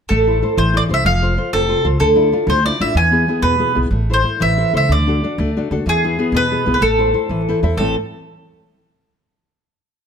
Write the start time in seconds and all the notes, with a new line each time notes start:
0.09 A1 A3 A4
0.27 E4 A4 C5
0.42 E4 A4 C5
0.57 A1 E3 C5
0.74 E4 A4 C5 D5
0.89 C2 E4 A4 C5
0.94 E5
1.05 F1 F3 F5
1.22 F4 A4 C5
1.37 F4 A4 C5
1.53 F1 C3 A4
1.69 F4 A4 C5
1.85 C#2 F4 A4 C5
2.00 D2 D3 A4
2.15 D4 E4 F4
2.32 D4 E4 F4
2.47 D2 A3 C5
2.65 D4 E4 F4 D5
2.80 A1 D4 E4 F4 E5
2.95 E2 E3 G#5
3.11 B3 E4 G#4
3.28 B3 E4 G#4
3.42 E2 B2 B4
3.59 B3 E4 G#4
3.75 B1 B3 E4 G#4
3.91 A1 A3
4.10 E4 A4 C5
4.24 E4 A4 C5
4.40 A1 E3 E5
4.58 E4 A4 C5
4.73 C#2 E4 A4 C5 E5
4.89 D2 D3 D5
5.07 D4 F#4 A4
5.23 D4 F#4 A4
5.38 D2 A3
5.57 D4 F#4 A4
5.71 D2 D4 F#4 A4
5.86 E2 E3 G#4
6.04 B3 E4 G#4
6.19 B3 E4 G#4
6.32 E2 B2
6.37 B4
6.51 B3 E4 G#4
6.65 B1 B3 E4 G#4
6.74 B4
6.81 A1 A3 A4
6.99 E4 A4 C5
7.14 E4 A4 C5
7.29 A1 E3
7.49 E4 A4 C5
7.63 E2 E4 A4 C5 E5
7.77 A1 A2 E3 A3 C4 E4 A4